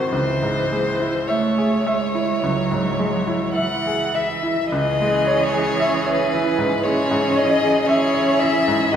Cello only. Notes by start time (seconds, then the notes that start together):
Already playing: D#3
0.11 E3
1.29 A3
1.83 G#3
2.41 F#3
3.54 E3
4.69 E3
6.85 E3
7.90 E3
8.92 D#3